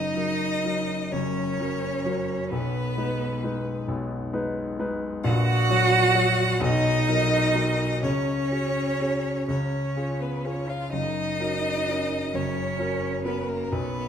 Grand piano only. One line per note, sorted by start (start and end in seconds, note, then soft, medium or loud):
0.00 0.14 F#1 medium
0.00 0.14 F#2 medium
0.15 0.60 F#3 soft
0.15 0.60 F#4 medium
0.15 0.60 A#4 medium
0.65 1.08 F#3 medium
0.65 1.08 F#4 medium
0.65 1.09 A#4 medium
1.13 1.57 F#1 medium
1.13 1.58 F#2 medium
1.60 2.01 F#3 medium
1.60 2.01 F#4 medium
1.60 2.01 A#4 medium
2.05 2.47 F#3 medium
2.05 2.47 F#4 medium
2.05 2.47 A#4 medium
2.52 2.96 B1 medium
2.52 2.96 B2 medium
2.97 3.39 G#3 medium
2.97 3.39 D#4 medium
2.97 3.39 B4 medium
3.43 3.84 G#3 medium
3.43 3.84 D#4 medium
3.43 3.85 B4 medium
3.88 4.32 B1 medium
3.88 4.32 B2 medium
4.33 4.75 G#3 medium
4.33 4.75 D#4 medium
4.33 4.75 B4 medium
4.79 5.20 G#3 medium
4.79 5.21 D#4 medium
4.79 5.21 B4 medium
5.24 5.68 A#1 medium
5.24 5.68 A#2 medium
5.70 6.11 F#3 medium
5.70 6.11 F#4 medium
5.70 6.11 C#5 medium
6.15 6.57 F#3 medium
6.15 6.57 F#4 medium
6.15 6.57 C#5 medium
6.61 7.06 B1 loud
6.61 7.06 B2 medium
7.08 7.51 F#3 medium
7.08 7.51 F#4 medium
7.08 7.51 A#4 medium
7.55 7.99 F#3 medium
7.55 8.00 F#4 medium
7.55 8.00 A#4 medium
8.03 8.50 C#2 medium
8.03 8.50 C#3 medium
8.51 8.96 C#4 medium
8.51 8.96 F#4 medium
8.51 8.97 G#4 medium
9.01 9.45 C#4 medium
9.01 9.45 F#4 medium
9.01 9.45 G#4 medium
9.48 9.95 C#2 medium
9.48 9.95 C#3 medium
9.96 10.41 C#4 medium
9.96 10.41 F4 medium
9.96 10.41 G#4 medium
10.45 10.89 C#4 medium
10.45 10.89 F4 soft
10.45 10.89 G#4 medium
10.93 11.39 F#1 medium
10.93 11.39 F#2 medium
11.40 11.84 C#4 medium
11.40 11.84 F#4 medium
11.40 11.84 A#4 medium
11.88 12.30 C#4 medium
11.88 12.30 F#4 medium
11.88 12.30 A#4 medium
12.34 12.78 F#1 medium
12.34 12.78 F#2 medium
12.79 13.21 C#4 medium
12.79 13.22 F#4 medium
12.79 13.22 A#4 medium
13.25 13.68 C#4 medium
13.25 13.69 F#4 medium
13.25 13.69 A#4 medium
13.72 14.08 B1 medium
13.72 14.08 B2 medium